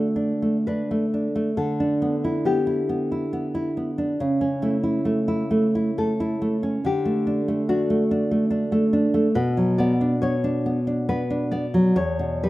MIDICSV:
0, 0, Header, 1, 3, 480
1, 0, Start_track
1, 0, Key_signature, 2, "major"
1, 0, Tempo, 1001669
1, 318, Tempo, 910470
1, 798, Time_signature, 3, 2, 24, 8
1, 798, Tempo, 872093
1, 2718, Tempo, 931677
1, 3198, Tempo, 840336
1, 5118, Key_signature, 2, "minor"
1, 5118, Tempo, 867052
1, 6558, Tempo, 955414
1, 6828, End_track
2, 0, Start_track
2, 0, Title_t, "Nylon-string guitar"
2, 0, Program_c, 0, 24
2, 0, Note_on_c, 0, 66, 37
2, 297, Note_off_c, 0, 66, 0
2, 321, Note_on_c, 0, 71, 54
2, 778, Note_off_c, 0, 71, 0
2, 797, Note_on_c, 0, 69, 43
2, 1258, Note_off_c, 0, 69, 0
2, 1286, Note_on_c, 0, 67, 48
2, 2225, Note_off_c, 0, 67, 0
2, 2479, Note_on_c, 0, 64, 45
2, 3177, Note_off_c, 0, 64, 0
2, 3192, Note_on_c, 0, 69, 58
2, 3665, Note_off_c, 0, 69, 0
2, 3694, Note_on_c, 0, 67, 55
2, 4149, Note_off_c, 0, 67, 0
2, 4166, Note_on_c, 0, 66, 57
2, 5093, Note_off_c, 0, 66, 0
2, 5115, Note_on_c, 0, 71, 53
2, 5340, Note_off_c, 0, 71, 0
2, 5355, Note_on_c, 0, 74, 60
2, 5578, Note_off_c, 0, 74, 0
2, 5595, Note_on_c, 0, 73, 56
2, 6051, Note_off_c, 0, 73, 0
2, 6078, Note_on_c, 0, 71, 54
2, 6298, Note_off_c, 0, 71, 0
2, 6313, Note_on_c, 0, 74, 49
2, 6541, Note_off_c, 0, 74, 0
2, 6560, Note_on_c, 0, 73, 60
2, 6781, Note_off_c, 0, 73, 0
2, 6798, Note_on_c, 0, 71, 55
2, 6828, Note_off_c, 0, 71, 0
2, 6828, End_track
3, 0, Start_track
3, 0, Title_t, "Nylon-string guitar"
3, 0, Program_c, 1, 24
3, 0, Note_on_c, 1, 50, 38
3, 0, Note_on_c, 1, 57, 31
3, 76, Note_on_c, 1, 62, 32
3, 151, Note_off_c, 1, 57, 0
3, 203, Note_on_c, 1, 57, 27
3, 270, Note_off_c, 1, 62, 0
3, 325, Note_on_c, 1, 62, 31
3, 394, Note_off_c, 1, 57, 0
3, 447, Note_on_c, 1, 57, 32
3, 519, Note_off_c, 1, 62, 0
3, 568, Note_on_c, 1, 62, 31
3, 635, Note_off_c, 1, 57, 0
3, 683, Note_on_c, 1, 57, 31
3, 753, Note_off_c, 1, 62, 0
3, 776, Note_off_c, 1, 50, 0
3, 797, Note_on_c, 1, 50, 39
3, 799, Note_off_c, 1, 57, 0
3, 923, Note_on_c, 1, 62, 32
3, 1043, Note_on_c, 1, 59, 30
3, 1114, Note_off_c, 1, 62, 0
3, 1167, Note_on_c, 1, 64, 29
3, 1234, Note_off_c, 1, 59, 0
3, 1281, Note_on_c, 1, 59, 36
3, 1356, Note_off_c, 1, 64, 0
3, 1400, Note_on_c, 1, 64, 30
3, 1474, Note_off_c, 1, 59, 0
3, 1524, Note_on_c, 1, 59, 33
3, 1594, Note_off_c, 1, 64, 0
3, 1647, Note_on_c, 1, 64, 28
3, 1717, Note_off_c, 1, 59, 0
3, 1764, Note_on_c, 1, 59, 35
3, 1839, Note_off_c, 1, 64, 0
3, 1884, Note_on_c, 1, 64, 34
3, 1957, Note_off_c, 1, 59, 0
3, 2007, Note_on_c, 1, 59, 31
3, 2077, Note_off_c, 1, 64, 0
3, 2123, Note_on_c, 1, 62, 35
3, 2197, Note_off_c, 1, 59, 0
3, 2222, Note_off_c, 1, 50, 0
3, 2243, Note_off_c, 1, 62, 0
3, 2245, Note_on_c, 1, 49, 39
3, 2359, Note_on_c, 1, 61, 34
3, 2476, Note_on_c, 1, 57, 33
3, 2549, Note_off_c, 1, 61, 0
3, 2593, Note_on_c, 1, 64, 32
3, 2668, Note_off_c, 1, 57, 0
3, 2712, Note_on_c, 1, 57, 34
3, 2784, Note_off_c, 1, 64, 0
3, 2830, Note_on_c, 1, 64, 35
3, 2903, Note_off_c, 1, 57, 0
3, 2947, Note_on_c, 1, 57, 36
3, 3028, Note_off_c, 1, 64, 0
3, 3073, Note_on_c, 1, 64, 33
3, 3146, Note_off_c, 1, 57, 0
3, 3190, Note_on_c, 1, 57, 35
3, 3273, Note_off_c, 1, 64, 0
3, 3317, Note_on_c, 1, 64, 38
3, 3397, Note_off_c, 1, 57, 0
3, 3439, Note_on_c, 1, 57, 35
3, 3518, Note_off_c, 1, 64, 0
3, 3561, Note_on_c, 1, 61, 36
3, 3638, Note_off_c, 1, 57, 0
3, 3668, Note_off_c, 1, 49, 0
3, 3684, Note_on_c, 1, 50, 42
3, 3686, Note_off_c, 1, 61, 0
3, 3803, Note_on_c, 1, 57, 37
3, 3926, Note_on_c, 1, 62, 34
3, 3999, Note_off_c, 1, 57, 0
3, 4048, Note_on_c, 1, 57, 38
3, 4121, Note_off_c, 1, 62, 0
3, 4168, Note_on_c, 1, 62, 41
3, 4242, Note_off_c, 1, 57, 0
3, 4287, Note_on_c, 1, 57, 36
3, 4359, Note_off_c, 1, 62, 0
3, 4408, Note_on_c, 1, 62, 37
3, 4475, Note_off_c, 1, 57, 0
3, 4523, Note_on_c, 1, 57, 37
3, 4592, Note_off_c, 1, 62, 0
3, 4633, Note_on_c, 1, 62, 37
3, 4708, Note_off_c, 1, 57, 0
3, 4755, Note_on_c, 1, 57, 41
3, 4823, Note_off_c, 1, 62, 0
3, 4876, Note_on_c, 1, 62, 35
3, 4946, Note_off_c, 1, 57, 0
3, 4995, Note_on_c, 1, 57, 41
3, 5069, Note_off_c, 1, 62, 0
3, 5092, Note_off_c, 1, 50, 0
3, 5117, Note_on_c, 1, 47, 46
3, 5118, Note_off_c, 1, 57, 0
3, 5239, Note_on_c, 1, 54, 35
3, 5362, Note_on_c, 1, 59, 36
3, 5430, Note_off_c, 1, 54, 0
3, 5480, Note_on_c, 1, 62, 38
3, 5551, Note_off_c, 1, 59, 0
3, 5600, Note_on_c, 1, 59, 44
3, 5669, Note_off_c, 1, 62, 0
3, 5718, Note_on_c, 1, 62, 39
3, 5789, Note_off_c, 1, 59, 0
3, 5840, Note_on_c, 1, 59, 38
3, 5908, Note_off_c, 1, 62, 0
3, 5957, Note_on_c, 1, 62, 38
3, 6028, Note_off_c, 1, 59, 0
3, 6077, Note_on_c, 1, 59, 36
3, 6146, Note_off_c, 1, 62, 0
3, 6197, Note_on_c, 1, 62, 40
3, 6266, Note_off_c, 1, 59, 0
3, 6316, Note_on_c, 1, 59, 35
3, 6387, Note_off_c, 1, 62, 0
3, 6438, Note_on_c, 1, 54, 37
3, 6509, Note_off_c, 1, 59, 0
3, 6535, Note_off_c, 1, 47, 0
3, 6559, Note_on_c, 1, 40, 45
3, 6560, Note_off_c, 1, 54, 0
3, 6676, Note_on_c, 1, 47, 35
3, 6800, Note_on_c, 1, 55, 37
3, 6828, Note_off_c, 1, 40, 0
3, 6828, Note_off_c, 1, 47, 0
3, 6828, Note_off_c, 1, 55, 0
3, 6828, End_track
0, 0, End_of_file